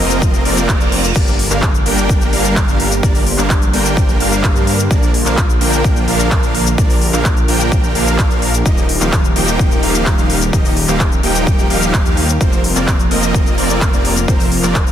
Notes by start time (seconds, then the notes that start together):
Already playing: C3 F3 A#3 F4 A#4
0.00 F1 F3 A#3 C4 A#4 D#5
0.10 closed hi-hat, shaker
0.22 kick, closed hi-hat, reverse cymbal, shaker
0.34 closed hi-hat, shaker
0.45 F1 F3 A#3 C4 A#4 D5, open hi-hat
0.57 closed hi-hat, shaker
0.69 kick, clap, closed hi-hat, shaker
0.80 F1 F3 A#3 C4 A#4 D5, closed hi-hat, shaker
0.92 open hi-hat
1.04 closed hi-hat, shaker
1.16 G1 D3 G3 A#3 D4 G4 A#4 D5, kick, closed hi-hat, crash, shaker
1.27 closed hi-hat, shaker
1.39 open hi-hat
1.51 G1 G3 A#3 D4 A#4 F5, clap, closed hi-hat, shaker
1.62 kick, clap, closed hi-hat, shaker
1.74 closed hi-hat, shaker
1.86 G1 G3 A#3 D4 A#4 G5, open hi-hat
1.98 closed hi-hat, shaker
2.09 kick, closed hi-hat, shaker
2.21 closed hi-hat, shaker
2.33 G1 G3 A#3 D4 A#4 F5, open hi-hat
2.45 closed hi-hat, shaker
2.56 kick, clap, closed hi-hat, shaker
2.68 G1 G3 A#3 D4 A#4 F5, closed hi-hat, shaker
2.80 open hi-hat
2.91 closed hi-hat, shaker
3.03 G1 G3 A#3 D4 A#4 C5 D5, kick, closed hi-hat, shaker
3.15 open hi-hat, shaker
3.27 open hi-hat
3.38 G1 G3 A#3 D4 A#4 F5, clap, closed hi-hat, shaker
3.50 kick, clap, closed hi-hat, shaker
3.62 closed hi-hat, shaker
3.73 G1 G3 A#3 D4 A#4 G5, open hi-hat
3.85 closed hi-hat, shaker
3.97 kick, closed hi-hat, shaker
4.09 closed hi-hat, shaker
4.20 G1 G3 A#3 D4 A#4 F5, open hi-hat
4.32 closed hi-hat, shaker
4.44 kick, clap, closed hi-hat, shaker
4.56 G2 G3 A#3 D4 A#4 F5, closed hi-hat, shaker
4.67 open hi-hat
4.79 closed hi-hat, shaker
4.91 A#1 F3 A#3 D4 F4 A#4 D5, kick, closed hi-hat, shaker
5.02 closed hi-hat, shaker
5.14 open hi-hat
5.26 A#1 F3 A#3 D4 A#4 F5, clap, closed hi-hat, shaker
5.37 kick, clap, closed hi-hat, shaker
5.49 closed hi-hat, shaker
5.61 A#1 F3 A#3 D4 A#4 G5, open hi-hat
5.73 closed hi-hat, shaker
5.84 kick, closed hi-hat, shaker
5.96 closed hi-hat, shaker
6.08 A#1 F3 A#3 D4 A#4 F5, open hi-hat
6.19 closed hi-hat, shaker
6.31 kick, clap, closed hi-hat, shaker
6.43 A#1 F3 A#3 D4 A#4 F5, closed hi-hat, shaker
6.55 open hi-hat
6.66 closed hi-hat, shaker
6.78 A#1 F3 A#3 D4 G4 A#4 D5, kick, closed hi-hat, shaker
6.90 open hi-hat, shaker
7.01 open hi-hat
7.13 A#1 F3 A#3 D4 A#4 F5, clap, closed hi-hat, shaker
7.25 kick, clap, closed hi-hat, shaker
7.37 closed hi-hat, shaker
7.48 A#1 F3 A#3 D4 A#4 G5, open hi-hat
7.60 closed hi-hat, shaker
7.72 kick, closed hi-hat, shaker
7.83 closed hi-hat, shaker
7.95 A#1 F3 A#3 D4 A#4 F5, open hi-hat
8.07 closed hi-hat, shaker
8.19 kick, clap, closed hi-hat, shaker
8.30 A#1 F3 A#3 D4 A#4 F5, closed hi-hat, shaker
8.42 open hi-hat
8.54 closed hi-hat, shaker
8.66 D#1 D#3 F3 G3 A#3 D#4 F4 G4 D#5, kick, closed hi-hat, shaker
8.77 closed hi-hat, shaker
8.89 open hi-hat
9.01 D#1 F3 A#3 D#4 G4 F5, clap, closed hi-hat, shaker
9.12 kick, clap, closed hi-hat, shaker
9.24 closed hi-hat, shaker
9.36 D#1 F3 A#3 D#4 G4 G5, open hi-hat
9.48 closed hi-hat, shaker
9.59 kick, closed hi-hat, shaker
9.71 closed hi-hat, shaker
9.83 D#1 F3 A#3 D#4 G4 F5, open hi-hat
9.95 closed hi-hat, shaker
10.06 kick, clap, closed hi-hat, shaker
10.18 D#1 F3 A#3 D#4 G4 F5, closed hi-hat, shaker
10.30 open hi-hat
10.41 closed hi-hat, shaker
10.53 D#1 F3 A#3 D#4 G4 D#5, kick, closed hi-hat, shaker
10.65 open hi-hat, shaker
10.77 open hi-hat
10.88 D#1 F3 A#3 D#4 G4 F5, clap, closed hi-hat, shaker
11.00 kick, clap, closed hi-hat, shaker
11.12 closed hi-hat, shaker
11.23 D#1 F3 A#3 D#4 G4 G5, open hi-hat
11.35 closed hi-hat, shaker
11.47 kick, closed hi-hat, shaker
11.59 closed hi-hat, shaker
11.70 D#1 F3 A#3 D#4 G4 F5, open hi-hat
11.82 closed hi-hat, shaker
11.94 kick, clap, closed hi-hat, shaker
12.05 D#2 F3 A#3 D#4 G4 F5, closed hi-hat, shaker
12.17 open hi-hat
12.29 closed hi-hat, shaker
12.41 F1 C3 F3 A#3 C4 F4 A#4 C5, kick, closed hi-hat, shaker
12.52 closed hi-hat, shaker
12.64 open hi-hat
12.76 F1 F3 A#3 C4 A#4 D5, clap, closed hi-hat, shaker
12.87 kick, clap, closed hi-hat, shaker
12.99 closed hi-hat, shaker
13.11 F1 F3 A#3 C4 A#4 D#5, open hi-hat
13.23 closed hi-hat, shaker
13.34 kick, closed hi-hat, shaker
13.46 closed hi-hat, shaker
13.58 F1 F3 A#3 C4 A#4 D5, open hi-hat
13.70 closed hi-hat, shaker
13.81 kick, clap, closed hi-hat, shaker
13.93 F1 F3 A#3 C4 A#4 D5, closed hi-hat, shaker
14.05 open hi-hat
14.17 closed hi-hat, shaker
14.28 F1 F3 A#3 C4 A#4 C5, kick, closed hi-hat, shaker
14.40 open hi-hat, shaker
14.52 open hi-hat
14.63 F1 F3 A#3 C4 A#4 D5, clap, closed hi-hat, shaker
14.75 kick, clap, closed hi-hat, shaker
14.87 closed hi-hat, shaker